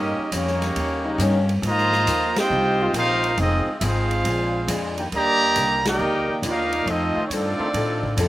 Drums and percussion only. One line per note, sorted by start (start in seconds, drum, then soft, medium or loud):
0.32 hi-hat pedal medium
0.32 ride medium
0.47 snare soft
0.62 snare medium
0.62 ride medium
0.76 ride medium
1.20 hi-hat pedal medium
1.20 ride medium
1.49 ride medium
1.63 ride medium
1.78 snare soft
1.92 snare medium
2.07 hi-hat pedal medium
2.07 ride medium
2.36 snare loud
2.36 ride medium
2.94 hi-hat pedal medium
2.94 ride medium
3.24 ride medium
3.38 ride medium
3.81 hi-hat pedal medium
3.81 ride medium
4.11 ride medium
4.25 ride medium
4.68 hi-hat pedal medium
4.68 ride medium
4.98 ride medium
5.12 ride medium
5.56 hi-hat pedal medium
5.56 ride medium
5.85 snare medium
5.85 ride medium
6.43 hi-hat pedal medium
6.43 ride medium
6.72 ride medium
6.87 ride medium
7.31 hi-hat pedal medium
7.31 ride medium
7.74 ride medium
8.03 kick medium
8.17 hi-hat pedal medium
8.17 ride medium